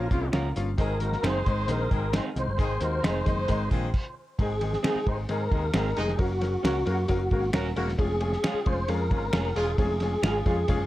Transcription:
0.10 picked electric bass C2, horn section C#3 A#3 F4, grand piano F3 A#3 C#4 F4, kick, closed hi-hat
0.32 picked electric bass C#2, grand piano F3 A#3 C#4 F4, clean electric guitar C#4 F4 A#4, finger snap, snare, closed hi-hat
0.56 picked electric bass G1, grand piano F3 A#3 C#4 F4, closed hi-hat
0.78 picked electric bass G#1, grand piano D#3 G#3 C4 D#4, horn section D#3 C4 G#4, tonewheel organ A#4, kick, closed hi-hat
1.00 grand piano D#3 G#3 C4 D#4, horn section A#3 F#4 A#4, closed hi-hat
1.13 snare
1.23 picked electric bass F#1, grand piano D#3 G#3 C4 D#4, horn section G#3 D#4 C5, clean electric guitar C4 D#4 G#4, finger snap, snare, closed hi-hat
1.27 tonewheel organ C5
1.46 picked electric bass G#1, grand piano D#3 G#3 C4 D#4, kick, closed hi-hat
1.68 picked electric bass A#1, grand piano D#3 G#3 C4 D#4, tonewheel organ A#4, closed hi-hat
1.90 picked electric bass G#1, horn section D#3 C4 G#4, grand piano D#3 G#3 C4 D#4, kick, closed hi-hat
2.13 grand piano D#3 G#3 C4 D#4, clean electric guitar C4 D#4 G#4, tonewheel organ C5, finger snap, snare, closed hi-hat
2.36 picked electric bass C2, grand piano D#3 G#3 C4 D#4, tonewheel organ C5, closed hi-hat
2.47 picked electric bass G1
2.58 picked electric bass G#1, grand piano D#3 G#3 C4 D#4, horn section D#3 C4 G#4, kick, closed hi-hat
2.81 picked electric bass D#2, grand piano D#3 G#3 C4 D#4, horn section A#3 F#4 A#4, closed hi-hat
3.03 picked electric bass F1, grand piano D#3 G#3 C4 D#4, horn section G#3 D#4 C5, clean electric guitar C4 D#4 G#4, finger snap, snare, closed hi-hat
3.25 picked electric bass F#1, grand piano D#3 G#3 C4 D#4, kick, closed hi-hat
3.48 picked electric bass G#1, grand piano D#3 G#3 C4 D#4, kick, closed hi-hat
3.71 picked electric bass A#1, grand piano D#3 G#3 C4 F4, horn section D#3 C4 G#4, kick, closed hi-hat
3.94 kick, crash
4.38 picked electric bass G#1, grand piano D#3 G#3 C4 D#4 G#4, tonewheel organ G#4, kick, ride
4.61 grand piano D#3 G#3 C4 D#4 G#4, ride
4.73 snare
4.83 horn section C3 G#3 D#4, grand piano D#3 G#3 C4 D#4 G#4, clean electric guitar C4 D#4 G#4, finger snap, snare, ride
4.96 muted picked electric bass stroke
5.06 picked electric bass G#1, horn section C3 G#3 D#4, grand piano D#3 G#3 C4 D#4 G#4, tonewheel organ C5, kick, ride
5.29 picked electric bass G#2, grand piano D#3 G#3 C4 D#4 G#4, tonewheel organ A#4, ride
5.51 picked electric bass D#2, horn section C3 G#3 D#4, grand piano D#3 G#3 C4 D#4 G#4, kick, ride
5.73 picked electric bass G#1, grand piano D#3 G#3 C4 D#4 G#4, clean electric guitar C4 D#4 G#4, finger snap, snare, ride
5.96 picked electric bass F1, horn section C3 G#3 D#4, grand piano D#3 G#3 C4 D#4 G#4, tonewheel organ G#4, ride
6.08 snare
6.17 picked electric bass F#1, grand piano F#3 A#3 C#4 F#4 A#4, tonewheel organ F#4, kick, ride
6.40 grand piano F#3 A#3 C#4 F#4 A#4, snare, ride
6.63 picked electric bass C#2, horn section C#3 A#3 F#4, grand piano F#3 A#3 C#4 F#4 A#4, clean electric guitar C#4 F#4 A#4, finger snap, snare, ride
6.85 picked electric bass F#2, horn section C#3 A#3 F#4, grand piano F#3 A#3 C#4 F#4 A#4, ride
7.08 picked electric bass F#1, grand piano F#3 A#3 C#4 F#4 A#4, kick, ride
7.31 picked electric bass G#1, horn section C#3 A#3 F#4, grand piano F#3 A#3 C#4 F#4 A#4, kick, ride
7.53 picked electric bass D#1, grand piano F#3 A#3 C#4 F#4 A#4, clean electric guitar C#4 F#4 A#4, finger snap, snare, ride
7.76 picked electric bass E1, horn section C#3 A#3 F#4, grand piano F#3 A#3 C#4 F#4 A#4, ride
7.88 snare
7.98 picked electric bass F1, grand piano F3 G#3 C#4 F4 G#4, tonewheel organ G#4, kick, ride
8.20 grand piano F3 G#3 C#4 F4 G#4, ride
8.33 snare
8.43 horn section C#3 G#3 F4, grand piano F3 G#3 C#4 F4 G#4, clean electric guitar C#4 F4 G#4, finger snap, snare, ride
8.54 muted picked electric bass stroke
8.65 picked electric bass F1, horn section C#3 G#3 F4, grand piano F3 G#3 C#4 F4 G#4, tonewheel organ C5, kick, ride
8.88 picked electric bass F2, grand piano F3 G#3 C#4 F4 G#4, tonewheel organ A#4, ride
9.10 picked electric bass G#1, horn section C#3 G#3 F4, grand piano F3 G#3 C#4 F4 G#4, kick, ride
9.32 picked electric bass F1, grand piano F3 G#3 C#4 F4 G#4, clean electric guitar C#4 F4 G#4, finger snap, snare, ride
9.55 picked electric bass E1, horn section C#3 G#3 F4, grand piano F3 G#3 C#4 F4 G#4, tonewheel organ G#4, ride
9.78 picked electric bass F1, grand piano F3 G#3 C#4 F4 G#4, tonewheel organ G#4, kick, ride
10.00 grand piano F3 G#3 C#4 F4 G#4, snare, ride
10.23 picked electric bass G#1, horn section C#3 G#3 F4, grand piano F3 G#3 C#4 F4 G#4, clean electric guitar C#4 F4 G#4, finger snap, snare, ride
10.46 picked electric bass F2, horn section C#3 G#3 F4, grand piano F3 G#3 C#4 F4 G#4, kick, ride
10.68 picked electric bass F1, grand piano F3 G#3 C#4 F4 G#4, kick, ride
10.79 picked electric bass F#1

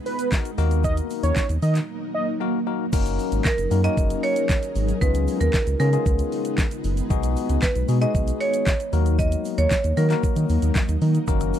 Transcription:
Already playing: ambient pad G#3 B3 D#4
0.06 analog synth lead B4, open hi-hat, shaker
0.19 closed hi-hat, shaker
0.32 tine electric piano B3 D#4 F#4 A#4, kick, snare, clap, shaker
0.45 closed hi-hat, shaker
0.58 analog synth bass D#2, ambient pad F#3 A#3, tine electric piano A#3 D#4 F#4 A#4, open hi-hat, shaker
0.71 closed hi-hat, shaker
0.84 analog synth lead D#5, kick, shaker
0.97 closed hi-hat, shaker
1.10 open hi-hat, shaker
1.23 analog synth bass D#2, analog synth lead C#5, closed hi-hat, shaker
1.36 kick, snare, clap, shaker
1.49 analog synth bass D#2, closed hi-hat, shaker
1.62 analog synth bass D#3, analog synth lead D#5, open hi-hat, shaker
1.75 clap, closed hi-hat, shaker
2.15 analog synth lead D#5
2.40 tine electric piano A#3 D#4 F#4 A#4
2.66 tine electric piano A#3 D#4 F#4 A#4
2.93 analog synth bass F#1, ambient pad F#3 C#4 D#4 G#4 A#4, tine electric piano A#3 C#4 D#4 F#4 A#4, kick, crash, shaker
3.06 closed hi-hat, shaker
3.19 open hi-hat, shaker
3.32 analog synth bass G#1, closed hi-hat, shaker
3.45 marimba A#4, kick, snare, clap, shaker
3.58 analog synth bass F#1, closed hi-hat, shaker
3.71 analog synth bass F#2, tine electric piano A#3 C#4 D#4 F#4 A#4, open hi-hat, shaker
3.84 tine electric piano A#3 C#4 D#4 F#4 A#4, marimba D#5, closed hi-hat, shaker
3.97 analog synth bass F#1, kick, shaker
4.10 closed hi-hat, shaker
4.23 marimba C#5, open hi-hat, shaker
4.36 closed hi-hat, shaker
4.49 kick, snare, clap, shaker
4.63 closed hi-hat, shaker
4.75 analog synth bass G#1, open hi-hat, shaker
4.89 closed hi-hat, shaker
5.01 analog synth bass C#2, ambient pad C#3 G#3 B3 F4, tine electric piano G#3 B3 C#4 F4 G#4, marimba B4, kick, shaker
5.15 closed hi-hat, shaker
5.28 open hi-hat, shaker
5.41 analog synth bass D#2, marimba A#4, closed hi-hat, shaker
5.54 kick, snare, clap, shaker
5.67 analog synth bass C#2, closed hi-hat, shaker
5.80 analog synth bass C#3, tine electric piano G#3 B3 C#4 F4 G#4, marimba A#4, open hi-hat, shaker
5.93 tine electric piano G#3 B3 C#4 F4 G#4, closed hi-hat, shaker
6.06 analog synth bass C#2, kick, shaker
6.19 closed hi-hat, shaker
6.32 open hi-hat, shaker
6.45 closed hi-hat, shaker
6.58 kick, snare, clap, shaker
6.71 closed hi-hat, shaker
6.84 analog synth bass F#1, open hi-hat, shaker
6.97 closed hi-hat, shaker
7.10 analog synth bass B1, tine electric piano G#3 B3 D#4 F#4 G#4, kick, shaker
7.23 closed hi-hat, shaker
7.36 open hi-hat, shaker
7.49 analog synth bass C#2, closed hi-hat, shaker
7.62 marimba B4, kick, snare, clap, shaker
7.75 analog synth bass B1, closed hi-hat, shaker
7.88 analog synth bass B2, tine electric piano G#3 B3 D#4 F#4 G#4, open hi-hat, shaker
8.01 tine electric piano G#3 B3 D#4 F#4 G#4, marimba D#5, closed hi-hat, shaker
8.15 analog synth bass B1, kick, shaker
8.28 closed hi-hat, shaker
8.41 marimba C#5, open hi-hat, shaker
8.54 closed hi-hat, shaker
8.67 kick, snare, clap, shaker
8.80 closed hi-hat, shaker
8.93 analog synth bass D#2, tine electric piano F#3 A#3 D#4 F#4 A#4, ambient pad F#3 A#3 D#4, open hi-hat, shaker
9.06 closed hi-hat, shaker
9.19 marimba D#5, kick, shaker
9.32 closed hi-hat, shaker
9.45 open hi-hat, shaker
9.58 analog synth bass D#2, marimba C#5, closed hi-hat, shaker
9.71 kick, snare, clap, shaker
9.84 analog synth bass D#2, closed hi-hat, shaker
9.97 analog synth bass D#3, tine electric piano F#3 A#3 D#4 F#4 A#4, marimba A#4, open hi-hat, shaker
10.10 tine electric piano F#3 A#3 D#4 F#4 A#4, clap, closed hi-hat, shaker
10.23 kick, shaker
10.36 analog synth bass D#3, closed hi-hat, shaker
10.49 analog synth bass D#2, open hi-hat, shaker
10.62 analog synth bass D#2, closed hi-hat, shaker
10.75 analog synth bass D#2, kick, snare, clap, shaker
10.89 analog synth bass D#2, closed hi-hat, shaker
11.02 analog synth bass D#3, open hi-hat, shaker
11.15 closed hi-hat, shaker
11.27 analog synth bass F#1, synth pluck D#3, tine electric piano A#3 C#4 D#4 F#4 A#4, kick, shaker
11.40 synth pluck D#3, closed hi-hat, shaker
11.54 open hi-hat, shaker

